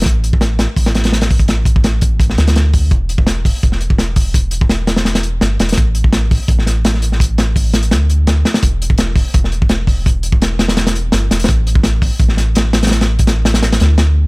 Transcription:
<<
  \new Staff \with { instrumentName = "Sub bass" } { \clef bass \time 4/4 \key a \dorian \tempo 4 = 168 a,,4. r8 a,,2~ | a,,2~ a,,8 d,4. | e,,4. r8 e,,2~ | e,,2. g,,8 e,,8 |
a,,4. r8 a,,2~ | a,,2 d,4. r8 | e,,4. r8 e,,2~ | e,,2. g,,8 e,,8 |
a,,4. r8 a,,2~ | a,,2~ a,,8 d,4. | }
  \new DrumStaff \with { instrumentName = "Drums" } \drummode { \time 4/4 <hh bd>8 hh16 bd16 <hh sn>8 <hh sn>8 <hho bd>16 <hh sn>16 <hh sn>16 <hh sn>16 <hh sn>16 <hh sn>16 <hho bd>16 <hh bd>16 | <hh sn>8 <hh bd>16 bd16 <hh sn>8 <hh bd>8 <hh bd>16 sn16 <hh sn>16 <hh sn>16 <hh sn>8 <hho bd>8 | <hh bd>8 hh16 bd16 <hh sn>8 <hho bd>8 <hh bd>16 sn16 hh16 bd16 <hh sn>8 <hho bd>8 | <hh bd>8 hh16 bd16 <hh sn>8 <hh sn>16 <hh sn>16 <hh sn>16 <hh sn>16 hh8 <hh sn>8 <hh sn>16 hh32 <hh sn>32 |
<hh bd>8 hh16 bd16 <hh sn>8 <hho bd>8 <hh bd>16 sn16 <hh sn>8 <hh sn>16 sn16 hh16 sn16 | <hh bd>8 <hh sn>8 <hho bd>8 <hh sn>16 hh16 <hh sn>8 hh8 <hh sn>8 <hh sn>16 <hh sn>16 | <hh bd>8 hh16 bd16 <hh sn>8 <hho bd>8 <hh bd>16 sn16 hh16 bd16 <hh sn>8 <hho bd>8 | <hh bd>8 hh16 bd16 <hh sn>8 <hh sn>16 <hh sn>16 <hh sn>16 <hh sn>16 hh8 <hh sn>8 <hh sn>16 hh32 <hh sn>32 |
<hh bd>8 hh16 bd16 <hh sn>8 <hho bd>8 <hh bd>16 sn16 <hh sn>8 <hh sn>16 sn16 <hh sn>16 <hh sn>32 <hh sn>32 | <hh sn>16 <hh sn>8 <hh bd>16 <hh sn>8 <hh sn>16 <hh sn>16 <hh sn>16 <hh sn>16 <hh sn>8 <hh sn>4 | }
>>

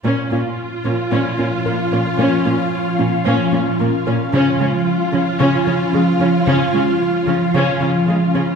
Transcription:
<<
  \new Staff \with { instrumentName = "Ambient pad" } { \time 4/4 \key bes \minor \tempo 4 = 112 <f des' f' f''>1~ | <f des' f' f''>1 | <f des' f' f''>1~ | <f des' f' f''>1 | }
  \new Staff \with { instrumentName = "Viola section" } { \time 4/4 \key bes \minor << { f'1~ | f'1 | f'1~ | f'1 | } \\ { des'8 des'8 r8 des'8 des'8 des'8 bes8 des'8 | des'8 des'8 r8 des'8 des'8 des'8 bes8 des'8 | des'8 des'8 r8 des'8 des'8 des'8 aes8 des'8 | des'8 des'8 r8 des'8 des'8 des'8 aes8 des'8 | } >> }
  \new Staff \with { instrumentName = "Synth arpeggio sound" } { \time 4/4 \key bes \minor bes8 f'8 r8 des'8 bes8 des'8 bes'8 bes'8 | bes8 f'8 r8 des'8 bes8 des'8 bes'8 bes'8 | des8 aes8 r8 f8 des8 f8 des'8 des'8 | des8 aes8 r8 f8 des8 f8 des'8 des'8 | }
  \new Staff \with { instrumentName = "Cello section" } { \clef bass \time 4/4 \key bes \minor bes,8 bes,8 r8 bes,8 bes,8 bes,8 bes,8 bes,8 | bes,8 bes,8 r8 bes,8 bes,8 bes,8 bes,8 bes,8 | des8 des8 r8 des8 des8 des8 des8 des8 | des8 des8 r8 des8 des8 des8 des8 des8 | }
>>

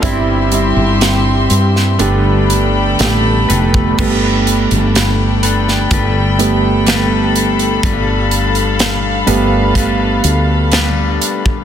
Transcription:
<<
  \new Staff \with { instrumentName = "String section" } { \time 4/4 \key g \mixolydian \tempo 4 = 62 << { <g' c'''>2 <a' b''>2 | <a' b''>1~ | <a' b''>1 | } \\ { e''2 g''2 | g''1 | f''1 | } >> }
  \new Staff \with { instrumentName = "Clean electric guitar" } { \time 4/4 \key g \mixolydian <g c' e' c''>2 <g d' a' b'>4. <d' a' b'>8 | <g d' a' b'>4. <d' a' b'>8 <g d' a' b'>4 <g d' a' b'>4 | <g d' a' b'>4. <d' a' b'>8 <g d' a' b'>4 <g d' a' b'>4 | }
  \new Staff \with { instrumentName = "Nylon-string guitar" } { \time 4/4 \key g \mixolydian e'2 r2 | r1 | r1 | }
  \new Staff \with { instrumentName = "Felt piano" } { \time 4/4 \key g \mixolydian <g c' e'>8 <g c' e'>8 <g c' e'>4 <a b g'>4 <a b g'>4 | r1 | r1 | }
  \new Staff \with { instrumentName = "Felt piano" } { \clef bass \time 4/4 \key g \mixolydian g,4. r8 <g, d>4. r8 | <g a b>4. r4 <g a b>8 r4 | r4. <g a b>4. r4 | }
  \new Staff \with { instrumentName = "Fretless electric bass" } { \clef bass \time 4/4 \key g \mixolydian g,,8. g,,8. g,8 g,,4 a,,8 f,,8 | g,,8. g,,4~ g,,16 g,,2 | g,,4. g,,4 d,4 r8 | }
  \new DrumStaff \with { instrumentName = "Drums" } \drummode { \time 4/4 <hh bd>8 hh8 <hh sn>8 hh16 sn16 hh8 hh8 <hh sn>8 hh16 bd16 | <cymc bd>8 hh16 hh16 <hh sn>8 hh16 sn16 <hh bd>8 hh8 <hh sn>8 hh16 hh16 | <hh bd>8 hh16 hh16 <hh sn>8 hh8 <hh bd>8 hh8 <hh sn>8 hh16 bd16 | }
>>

